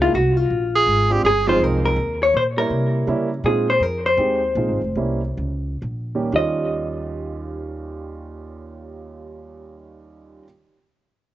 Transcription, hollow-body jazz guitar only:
0.02 F4
0.15 F#4
0.37 F4
1.26 G#4
1.49 C5
1.64 A#4
1.86 A#4
2.23 C#5
2.37 C5
2.58 A#4
3.46 G#4
3.70 C5
3.83 A#4
4.06 C5
6.36 D#5

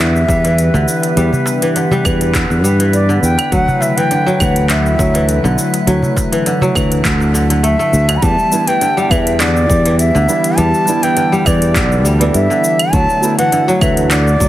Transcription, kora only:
Already playing: A3
0.00 D3
0.29 G3
0.45 E3
0.74 D3
1.17 G3
1.62 E3
1.76 D3
1.91 G3
2.05 E3
2.34 D3
2.64 G3
2.80 E3
3.09 D3
3.52 F#3
3.97 E3
4.11 D3
4.26 F#3
4.40 E3
4.69 D3
4.99 F#3
5.15 E3
5.44 D3
5.87 F#3
6.32 E3
6.46 D3
6.62 F#3
6.75 E3
7.05 D3
7.34 D3
7.50 D3
7.63 A3
7.79 A3
8.09 D3
8.22 G3
8.68 E3
8.81 D3
8.97 G3
9.11 E3
9.40 D3
9.69 G3
9.85 E3
10.15 D3
10.58 G3
11.03 E3
11.17 D3
11.32 G3
11.46 E3
11.76 D3
12.05 G3
12.21 E3
12.50 D3
12.93 F#3
13.39 E3
13.52 D3
13.68 F#3
13.82 E3
14.11 D3
14.40 F#3

